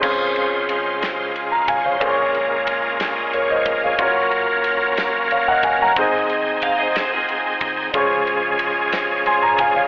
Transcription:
<<
  \new Staff \with { instrumentName = "Grand piano" } { \time 6/8 \key des \major \tempo 4. = 61 << { r2 r16 bes''16 <f'' aes''>16 <des'' f''>16~ | <des'' f''>16 r4. r16 <bes' des''>16 <c'' ees''>8 <des'' f''>16~ | <des'' f''>16 r4. r16 <des'' f''>16 <ees'' ges''>16 <f'' aes''>16 <ges'' bes''>16~ | <ges'' bes''>16 r2 r8. |
r2 <aes'' c'''>16 bes''16 <f'' aes''>16 <des'' f''>16 | } \\ { <c' des' f' aes' c''>2. | <des' f' aes' bes' c'' des''>2. | <des' f' ges' bes' des''>2. | <c' ees' aes' c'' ees''>2. |
<des' f' aes' c'' des''>2. | } >> }
  \new Staff \with { instrumentName = "Grand piano" } { \clef bass \time 6/8 \key des \major des4. r4. | bes,4. r4. | r2. | aes,4. r4. |
des4. r4. | }
  \new Staff \with { instrumentName = "Clean electric guitar" } { \time 6/8 \key des \major r2. | r2. | r2. | r4 f''16 <c'' ees''>16 <aes' c''>16 <f' aes'>4~ <f' aes'>16 |
r2. | }
  \new Staff \with { instrumentName = "Tonewheel organ" } { \time 6/8 \key des \major << { r2 r16 f''16 des''16 c''16~ | c''16 r4. ees''16 des''8 bes'16 aes'16~ | aes'16 r2 r8. | r2. |
r2. | } \\ { <des aes f' c''>2. | <aes bes c' des' f' bes'>2. | <ges bes des' bes' f''>2. | <c' ees' aes'>2. |
<f aes des' aes'>2. | } >> }
  \new Staff \with { instrumentName = "Fingered electric bass" } { \clef bass \time 6/8 \key des \major des,2~ des,8 aes,,8 | bes,,2~ bes,,8 f,,8 | ges,,2~ ges,,8 ges,,8 | aes,,2~ aes,,8 c,8 |
des,2~ des,8 f,,8 | }
  \new DrumStaff \with { instrumentName = "Drums" } \drummode { \time 6/8 <cymc bd>8 cymr8 cymr8 <cymr sn>8 cymr8 <bd cymr>8 | <bd cymr>8 cymr8 <bd cymr>8 <cymr sn>8 cymr8 <bd cymr>8 | <bd cymr>8 cymr8 cymr8 <cymr sn>8 cymr8 <bd cymr>8 | <bd cymr>8 cymr8 <bd cymr>8 <cymr sn>8 cymr8 <bd cymr>8 |
<bd cymr>8 cymr8 cymr8 <cymr sn>8 cymr8 <bd cymr>8 | }
>>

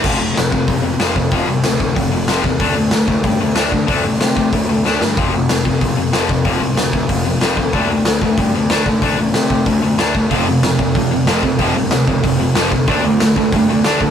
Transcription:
<<
  \new Staff \with { instrumentName = "Distorted electric guitar" } { \clef bass \time 4/4 \key f \major \tempo 4 = 187 <f, c f>8 <f, c>8 <f, c>8 <f, c>8 <f, c>8 <f, c>8 <f, c f>8 <f, c>8 | <f, c f>8 <f, c>8 <f, c>8 <f, c>8 <f, c>8 <f, c>8 <f, c f>8 <f, c>8 | <d a d'>8 <d a>8 <d a>8 <d a>8 <d a>8 <d a>8 <d a d'>8 <d a>8 | <d a d'>8 <d a>8 <d a>8 <d a>8 <d a>8 <d a>8 <d a d'>8 <d a>8 |
<f, c f>8 <f, c>8 <f, c>8 <f, c>8 <f, c>8 <f, c>8 <f, c f>8 <f, c>8 | <f, c f>8 <f, c>8 <f, c>8 <f, c>8 <f, c>8 <f, c>8 <f, c f>8 <f, c>8 | <d a d'>8 <d a>8 <d a>8 <d a>8 <d a>8 <d a>8 <d a d'>8 <d a>8 | <d a d'>8 <d a>8 <d a>8 <d a>8 <d a>8 <d a>8 <d a d'>8 <d a>8 |
<f, c f>8 <f, c>8 <f, c>8 <f, c>8 <f, c>8 <f, c>8 <f, c f>8 <f, c>8 | <f, c f>8 <f, c>8 <f, c>8 <f, c>8 <f, c>8 <f, c>8 <f, c f>8 <f, c>8 | <d a d'>8 <d a>8 <d a>8 <d a>8 <d a>8 <d a>8 <d a d'>8 <d a>8 | }
  \new Staff \with { instrumentName = "Distorted electric guitar" } { \clef bass \time 4/4 \key f \major r1 | r1 | r1 | r1 |
r1 | r1 | r1 | r1 |
<f, c f>8 <f, c>8 <f, c>8 <f, c>8 <f, c>8 <f, c>8 <f, c f>8 <f, c>8 | <f, c f>8 <f, c>8 <f, c>8 <f, c>8 <f, c>8 <f, c>8 <f, c f>8 <f, c>8 | <d a d'>8 <d a>8 <d a>8 <d a>8 <d a>8 <d a>8 <d a d'>8 <d a>8 | }
  \new Staff \with { instrumentName = "Picked electric bass" } { \clef bass \time 4/4 \key f \major f,,8 f,,8 f,,8 f,,8 bes,,8 f,,8 f,,8 f,8 | f,,8 c,8 d,4 f,,8 f,,8 f,,8 e,8 | d,8 d,8 d,8 d,8 g,8 d,8 d,8 d8 | d,8 a,,8 c4 d,8 d,8 d,8 g,8 |
f,,8 f,,8 f,,8 f,,8 bes,,8 f,,8 f,,8 f,8 | f,,8 c,8 d,4 f,,8 f,,8 f,,8 d,8 | d,8 d,8 d,8 d,8 g,8 d,8 d,8 d8 | d,8 a,,8 c4 d,8 d,8 d,8 c,8 |
f,,8 f,,8 f,,8 f,,8 bes,,8 f,,8 f,,8 f,8 | f,,8 c,8 d,4 f,,8 f,,8 f,,8 d,8 | d,8 d,8 d,8 d,8 g,8 d,8 d,8 d8 | }
  \new DrumStaff \with { instrumentName = "Drums" } \drummode { \time 4/4 <cymc bd>4 <hho sn>8 bd8 <hho bd>4 <hho sn>8 bd8 | <hho bd>4 <hho sn>8 bd8 <hho bd>4 <hho sn>8 bd8 | <hho bd>4 <hho sn>8 bd8 <hho bd>4 <hho sn>8 bd8 | <hho bd>4 <hho sn>8 bd8 <hho bd>4 sn8 sn8 |
<hho bd>4 <hho sn>8 bd8 <hho bd>4 <hho sn>8 bd8 | <hho bd>4 <hho sn>8 bd8 <hho bd>4 <hho sn>8 bd8 | <hho bd>4 <hho sn>8 bd8 <hho bd>4 <hho sn>8 bd8 | <hho bd>4 <hho sn>8 bd8 <hho bd>4 <hho sn>8 bd8 |
<hho bd>4 <hho sn>8 bd8 <hho bd>4 <hho sn>8 bd8 | <hho bd>4 <hho sn>8 bd8 <hho bd>4 <hho sn>8 bd8 | <hho bd>4 <hho sn>8 bd8 <hho bd>4 <hho sn>8 bd8 | }
>>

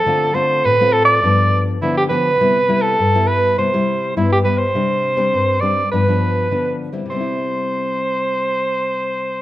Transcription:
<<
  \new Staff \with { instrumentName = "Soprano saxophone" } { \time 4/4 \key c \major \tempo 4 = 102 a'8 c''8 b'8 a'16 d''4 r16 e'16 g'16 b'8~ | b'8. a'8. b'8 c''4 e'16 g'16 b'16 c''16~ | c''4. d''8 b'4. r8 | c''1 | }
  \new Staff \with { instrumentName = "Nylon-string guitar" } { \time 4/4 \key c \major << { <a c' f'>8 <a c' f'>8. <a c' f'>8. <f b d'>4 <f b d'>8 <f b d'>16 r16 | <g b e'>16 r16 <g b e'>8 r16 <g b e'>8. <g b e'>16 <g e'>8. <g b e'>8 <g b e'>16 r16 | <g c' d'>8. <g c' d'>8. <g c' d'>16 r16 <f b d'>16 <f b d'>8. <f b d'>8. <g c' e'>16~ | <g c' e'>8. r2. r16 | } \\ { d4 a,4 g,4 d4 | c4 g,4 c4 g,4 | c4 g,4 g,4 d4 | <c g c' e'>1 | } >> }
>>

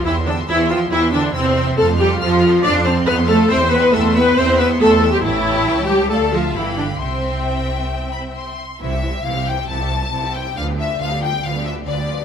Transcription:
<<
  \new Staff \with { instrumentName = "Violin section" } { \time 4/4 \key c \major \tempo 4 = 138 e'''16 c'''16 e'''16 c'''16 e'''16 c'''16 e'''16 c'''16 e'''16 c'''16 e'''16 c'''16 e'''16 c'''16 e'''16 c'''16 | f'''16 c'''16 f'''16 c'''16 f'''16 c'''16 f'''16 c'''16 f'''16 c'''16 f'''16 c'''16 f'''16 c'''16 f'''16 c'''16 | e'''16 c'''16 e'''16 c'''16 e'''16 c'''16 e'''16 c'''16 e'''16 c'''16 e'''16 c'''16 e'''16 c'''16 e'''16 c'''16 | a''2 a''4 b''4 |
c'''4 g''4. b''8 c'''4 | e''4 f''8 g''8 a''4. g''8 | f''8 e''8 f''8 g''8 f''8 e''8 d''4 | }
  \new Staff \with { instrumentName = "Violin section" } { \time 4/4 \key c \major << { g''16 e''16 g''16 e''16 g''16 e''16 g''16 e''16 g''16 e''16 g''16 e''16 g''16 e''16 g''16 e''16 | a''16 f''16 a''16 f''16 a''16 f''16 a''16 f''16 a''16 f''16 a''16 f''16 a''16 f''16 a''16 f''16 | g''16 e''16 g''16 e''16 g''16 e''16 g''16 e''16 g''16 e''16 g''16 e''16 g''16 e''16 g''16 e''16 | g''2 f''4 g''4 |
g''2.~ g''8 r8 | <e' c''>16 <g' e''>16 <e' c''>16 <g' e''>16 <e' c''>16 <g' e''>16 <e' c''>16 <g' e''>16 <e' c''>16 <g' e''>16 <e' c''>16 <g' e''>16 <e' c''>16 <g' e''>16 <e' c''>16 <g' e''>16 | <f' b'>16 <g' d''>16 <f' b'>16 <g' d''>16 <f' b'>16 <g' d''>16 <f' b'>16 <g' d''>16 <f' b'>16 <g' d''>16 <f' b'>16 <g' d''>16 <f' b'>16 <g' d''>16 <f' b'>16 <g' d''>16 | } \\ { c''16 e''16 c''16 e''16 c''16 e''16 c''16 e''16 c''16 e''16 c''16 e''16 c''16 e''16 c''16 e''16 | a'16 c''16 a'16 c''16 a'16 c''16 a'16 c''16 a'16 c''16 a'16 c''16 a'16 c''16 a'16 c''16 | e''16 c''16 e''16 c''16 e''16 c''16 e''16 c''16 e''16 c''16 e''16 c''16 e''16 c''16 e''16 c''16 | cis''2 d''8 e''8 f''4 |
e''2.~ e''8 r8 | r1 | r1 | } >> }
  \new Staff \with { instrumentName = "Viola section" } { \time 4/4 \key c \major e'8 d'8 e'8 f'8 e'8 d'8 c'4 | a'8 g'8 f'4 d''8 c''8 b'8 a'8 | c''8 b'8 a'8 b'8 c''8 b'8 a'8. g'16 | e'4. g'8 a'8 f'8 e'8 d'8 |
c'2.~ c'8 r8 | <e e'>16 <g c'>16 <e e'>16 <g c'>16 <e e'>16 <g c'>16 <e e'>16 <g c'>16 <e e'>16 <g c'>16 <e e'>16 <g c'>16 <e e'>16 <g c'>16 <e e'>16 <g c'>16 | <f d'>16 <g b>16 <f d'>16 <g b>16 <f d'>16 <g b>16 <f d'>16 <g b>16 <f d'>16 <g b>16 <f d'>16 <g b>16 <f d'>16 <g b>16 <f d'>16 <g b>16 | }
  \new Staff \with { instrumentName = "Cello section" } { \clef bass \time 4/4 \key c \major e8 d8 e8 f8 e8 d8 c4 | a8 g8 f4 d'8 c'8 b8 a8 | c'8 b8 a8 b8 c'8 b8 a8. g16 | e4. g8 a8 f8 e8 d8 |
c2.~ c8 r8 | c4 c4 c4 c4 | d4 d4 d4 d4 | }
  \new Staff \with { instrumentName = "Double bass section" } { \clef bass \time 4/4 \key c \major e,4 e,4 e,4 e,4 | f,4 f,4 f,4 f,4 | e,4 e,4 e,4 e,4 | a,,4 cis,4 d,4 g,,4 |
c,2.~ c,8 r8 | c,4 c,4 c,4 c,4 | d,4 d,4 d,4 d,4 | }
>>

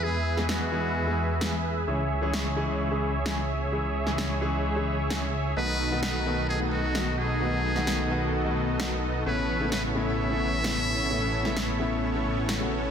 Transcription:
<<
  \new Staff \with { instrumentName = "Muted trumpet" } { \time 4/4 \key cis \minor \tempo 4 = 130 gis'4 fis'2~ fis'8 r8 | r1 | r1 | b'4 b'4 gis'8 fis'4 gis'8~ |
gis'2~ gis'8 r4. | b'4 b'8 e''2~ e''8~ | e''2. r4 | }
  \new Staff \with { instrumentName = "Supersaw synth" } { \time 4/4 \key cis \minor <gis' b' e''>1 | <gis' cis'' e''>1~ | <gis' cis'' e''>1 | <b dis' fis' a' dis''>1~ |
<b dis' fis' a' dis''>1 | <b cis' e' a' cis''>1~ | <b cis' e' a' cis''>1 | }
  \new Staff \with { instrumentName = "Grand piano" } { \time 4/4 \key cis \minor <e gis b gis'>16 r8 <e gis b gis'>8. <e gis b gis'>8. <e gis b gis'>8 r16 <e gis b gis'>16 r8. | <e gis cis' gis'>16 r8 <e gis cis' gis'>8. <e gis cis' gis'>8. <e gis cis' gis'>8 r16 <e gis cis' gis'>16 r8. | <e gis cis' gis'>16 r8 <e gis cis' gis'>8. <e gis cis' gis'>8. <e gis cis' gis'>8 r16 <e gis cis' gis'>16 r8. | <dis a b fis'>16 r8 <dis a b fis'>8. <dis a b fis'>8. <dis a b fis'>8 r16 <dis a b fis'>16 r8. |
<dis a b fis'>16 r8 <dis a b fis'>8. <dis a b fis'>8. <dis a b fis'>8 r16 <dis a b fis'>16 r8. | <cis a b e'>16 r8 <cis a b e'>8. <cis a b e'>8. <cis a b e'>8 r16 <cis a b e'>16 r8. | <cis a b e'>16 r8 <cis a b e'>8. <cis a b e'>8. <cis a b e'>8 r8 <cis a b fis'>16 r8 | }
  \new Staff \with { instrumentName = "Detuned saw bass" } { \clef bass \time 4/4 \key cis \minor e,1 | cis,1~ | cis,1 | b,,1~ |
b,,1 | a,,1~ | a,,1 | }
  \new DrumStaff \with { instrumentName = "Drums" } \drummode { \time 4/4 r8. sn16 sn4 r4 sn4 | r4 sn4 r4 sn4 | r8. sn16 sn4 r4 sn4 | r4 sn4 r4 sn4 |
r8. sn16 sn4 r4 sn4 | r4 sn4 r4 sn4 | r8. sn16 sn4 r4 sn4 | }
>>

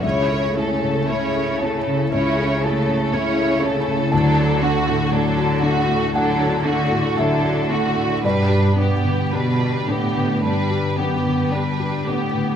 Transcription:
<<
  \new Staff \with { instrumentName = "Violin section" } { \time 4/4 \key g \lydian \tempo 4 = 57 cis''8 a'8 cis''8 a'8 cis''8 a'8 cis''8 a'8 | a'8 fis'8 a'8 fis'8 a'8 fis'8 a'8 fis'8 | b'8 g'8 b'8 g'8 b'8 g'8 b'8 g'8 | }
  \new Staff \with { instrumentName = "Harp" } { \time 4/4 \key g \lydian \tuplet 3/2 { <cis a a'>8 a8 a'8 e'8 a'8 e'8 cis8 a8 a'8 e'8 a'8 e'8 } | \tuplet 3/2 { d8 d'8 a'8 d''8 a'8 fis'8 a8 d'8 a'8 d''8 a'8 fis'8 } | \tuplet 3/2 { b,8 b8 g'8 b'8 g'8 d'8 d8 b8 g'8 b'8 g'8 d'8 } | }
  \new Staff \with { instrumentName = "Felt piano" } { \time 4/4 \key g \lydian << { e''2 cis''4 r4 | a''2 fis''4 e''4 | d''2. r4 | } \\ { cis,16 a'16 e'16 cis16 a16 a'16 e'16 cis16 cis,16 a'16 e'16 cis16 a16 a'16 e'16 cis16 | d,16 fis'16 d'16 a,16 a16 fis'16 d'16 a,16 a16 fis'16 d'16 a,16 a16 fis'16 d'16 a,16 | g,16 g'16 d'16 d16 b16 g'16 d'16 d16 b16 g'16 d'16 d16 b16 g'16 d'16 d16 | } >> }
  \new Staff \with { instrumentName = "Violin section" } { \time 4/4 \key g \lydian e'8 cis'8 e'8 cis'8 e'8 cis'8 e'8 cis'8 | d'8 fis'8 d'8 fis'8 d'8 fis'8 d'8 fis'8 | d'8 b8 d'8 b8 d'8 b8 d'8 b8 | }
  \new Staff \with { instrumentName = "Viola section" } { \time 4/4 \key g \lydian cis'8 a8 cis'8 a8 cis'8 a8 cis'8 a8 | fis8 a8 fis8 a8 fis8 a8 fis8 a8 | g8 b8 g8 b8 g8 b8 g8 b8 | }
  \new Staff \with { instrumentName = "Cello section" } { \clef bass \time 4/4 \key g \lydian cis4 cis4 cis4 cis4 | d4 d4 d4 d4 | g,4 b,8 a,8 g,8 fis,8 g,8 a,8 | }
>>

